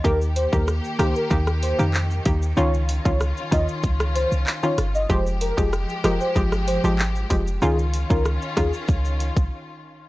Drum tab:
HH |--x---x---x---x-|--x---x---x---x-|--x---x---x---x-|--x---x---x-----|
SH |xxxxxxxxxxxxxxxx|xxxxxxxxxxxxxxxx|xxxxxxxxxxxxxxxx|xxxxxxxxxxxx----|
CP |------------x---|------------x---|------------x---|----------------|
SD |----r-r--r------|----r----r----r-|----r-r--r------|----r-r---------|
BD |o--o----o-----o-|---o--o-o-------|o--o----o-----o-|---o--o-o--o----|